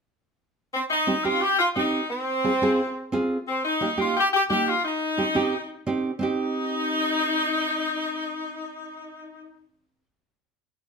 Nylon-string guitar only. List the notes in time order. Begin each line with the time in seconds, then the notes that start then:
1.07 C4 D#4 G4
1.24 C4 D#4 G4
1.76 C4 D#4 G4
2.44 C4 F4 G#4
2.62 C4 F4 G#4
3.12 C4 F4 G#4
3.81 A#3 D#4 G4
3.97 A#3 D#4 G4
4.50 A#3 D#4 G4
5.17 C4 D#4 G4
5.35 C4 D#4 G4
5.86 C4 D#4 G4
6.19 C4 D#4 G4